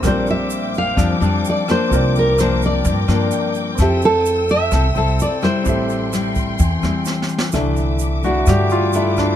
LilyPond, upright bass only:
\new Staff \with { instrumentName = "Upright bass" } { \clef bass \time 4/4 \key a \phrygian \tempo 4 = 128 bes,,2 f,8 f,8 r4 | c,2 g,8 g,8 r4 | f,2 c,8 c,8 r4 | a,,2 e,8 e,8 r4 |
\key c \major c,2 g,2 | }